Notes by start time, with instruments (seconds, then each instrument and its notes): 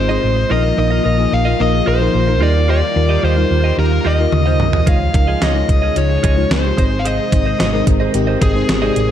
Already playing: fingered electric bass G#1, string machine C3 D#3 G#3 D#4, fm electric piano G#3 C4 D#4 F4 G#4 C5, lead electric guitar C5
0.09 fm electric piano G#3 C4 D#4 C5, clean electric guitar G#4 C5 D#5
0.23 fingered electric bass A1, muted clean electric guitar stroke
0.36 muted clean electric guitar stroke
0.50 fingered electric bass A#1, string machine D#3 F3 A#3 F4, fm electric piano F3 A#3 D#4 A#4, clean electric guitar F4 A#4 D#5, lead electric guitar D#5
0.64 muted clean electric guitar stroke
0.77 fingered electric bass A#1, fm electric piano F3 A#3 D#4 A#4, lead electric guitar D#5, muted clean electric guitar stroke
0.91 clean electric guitar F4 A#4 D#5
1.04 fingered electric bass A#1, clean electric guitar F4 A#4 D#5
1.18 fm electric piano F3 A#3 D#4 G#4, muted clean electric guitar stroke
1.32 fingered electric bass A#1, lead electric guitar F5, muted clean electric guitar stroke
1.45 clean electric guitar F4 A#4 D#5
1.60 fingered electric bass A#1, fm electric piano F3 A#3 D#4 A#4, lead electric guitar D#5
1.73 muted clean electric guitar stroke
1.86 fingered electric bass A#1, clean electric guitar F4 A#4 D#5, lead electric guitar C5
2.00 fm electric piano F3 A#3 D#4 A#4, muted clean electric guitar stroke
2.15 fingered electric bass A#1
2.27 fm electric piano F3 A#3 D#4 A#4, muted clean electric guitar stroke
2.41 fingered electric bass D#2, fm electric piano G3 D#4 F4 A#4, string machine G3 A#3, clean electric guitar F4 G4 D#5, lead electric guitar D5
2.55 muted clean electric guitar stroke
2.68 clean electric guitar F4 G4 D#5, lead electric guitar D5
2.82 muted clean electric guitar stroke
2.95 fingered electric bass D#2, fm electric piano G3 D#4 F4 A#4, muted clean electric guitar stroke
3.09 clean electric guitar F4 G4 D#5
3.23 fingered electric bass D#2, clean electric guitar F4 G4 D#5, lead electric guitar C5
3.37 fm electric piano G3 D#4 F4 A#4, muted clean electric guitar stroke
3.50 fingered electric bass D#2, muted clean electric guitar stroke
3.64 clean electric guitar F4 G4 D#5
3.78 fingered electric bass D#2, fm electric piano G3 D#4 F4 G4, lead electric guitar A#4
3.91 muted clean electric guitar stroke
4.05 fingered electric bass D#2, clean electric guitar F4 G4 D#5, lead electric guitar D#5
4.18 fm electric piano G3 D#4 F4 A#4, muted clean electric guitar stroke
4.32 fingered electric bass D#2, muted clean electric guitar stroke, high tom
4.46 fm electric piano G3 D#4 F4 C5, clean electric guitar F4 G4 D#5
4.59 fingered electric bass C2, muted clean electric guitar stroke, mid tom
4.73 muted clean electric guitar stroke, floor tom
4.86 fingered electric bass C#2, string machine C#3 F3 G#3 D#4, fm electric piano G#3 D#4 F4 C#5, clean electric guitar F4 G#4 D#5, lead electric guitar F5, kick, closed hi-hat
5.00 muted clean electric guitar stroke
5.14 fingered electric bass C#2, fm electric piano G#3 D#4 F4 A#4, lead electric guitar F5, muted clean electric guitar stroke, kick, closed hi-hat
5.27 clean electric guitar F4 G#4 D#5
5.41 fingered electric bass C#2, clean electric guitar F4 G#4 D#5, lead electric guitar D#5, snare, closed hi-hat
5.55 fm electric piano G#3 D#4 F4 G#4, muted clean electric guitar stroke
5.69 fingered electric bass C#2, muted clean electric guitar stroke, kick, closed hi-hat
5.82 clean electric guitar F4 G#4 D#5
5.96 fingered electric bass C#2, fm electric piano G#3 D#4 F4 D#5, lead electric guitar C#5, closed hi-hat
6.10 muted clean electric guitar stroke
6.23 fingered electric bass C#2, clean electric guitar F4 G#4 D#5, kick, closed hi-hat
6.36 fm electric piano G#3 D#4 F4 C#5, muted clean electric guitar stroke
6.50 fingered electric bass C#2, lead electric guitar C5, snare, closed hi-hat
6.64 fm electric piano G#3 D#4 F4 G4, muted clean electric guitar stroke
6.77 fingered electric bass G#1, string machine C3 D#3, fm electric piano G#3 C4 D#4 C5, clean electric guitar G#4 C5 D#5, kick, closed hi-hat
6.91 muted clean electric guitar stroke
6.99 lead electric guitar F5
7.05 clean electric guitar G#4 C5 D#5, lead electric guitar D#5, closed hi-hat
7.18 muted clean electric guitar stroke
7.32 fingered electric bass G#1, fm electric piano G#3 C4 D#4 C5, muted clean electric guitar stroke, kick, closed hi-hat
7.45 clean electric guitar G#4 C5 D#5
7.59 fingered electric bass G#1, clean electric guitar G#4 C5 D#5, snare, closed hi-hat
7.73 fm electric piano G#3 C4 D#4 A#4, muted clean electric guitar stroke
7.86 fingered electric bass G#1, muted clean electric guitar stroke, kick, closed hi-hat
8.00 clean electric guitar G#4 C5 D#5
8.14 fingered electric bass G#1, fm electric piano G#3 C4 D#4 G4, muted clean electric guitar stroke, closed hi-hat
8.27 clean electric guitar G#4 C5 D#5
8.41 fingered electric bass G#1, clean electric guitar G#4 C5 D#5, lead electric guitar G#4, kick, closed hi-hat
8.55 fm electric piano G#3 C4 D#4 C5, muted clean electric guitar stroke
8.68 fingered electric bass G#1, muted clean electric guitar stroke, snare, closed hi-hat
8.82 fm electric piano G#3 C4 D#4 D5, clean electric guitar G#4 C5 D#5
8.96 fingered electric bass A1, muted clean electric guitar stroke, closed hi-hat